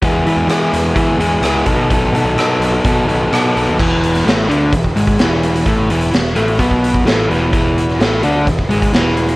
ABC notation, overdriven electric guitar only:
X:1
M:4/4
L:1/8
Q:1/4=128
K:E
V:1 name="Overdriven electric guitar"
[E,G,B,EG] [B,EG] [G,B,EG]2 [E,G,B,EG] [B,EG] [G,B,EG] [B,,D,F,B,DA] | [B,,D,F,B,DA] [F,B,DA] [F,B,DA]2 [B,,D,F,B,DA] [F,B,DA] [F,B,DA] [F,B,DA] | [E,,E,]2 [A,,A,] [=D,=D] E,, [G,,G,] [E,,E,]2 | [A,,A,] [E,,E,] E,, [A,,A,] [B,,B,]2 [A,,A,] [E,,E,] |
[E,,E,]2 [A,,A,] [=D,=D] E,, [G,,G,] [E,,E,]2 |]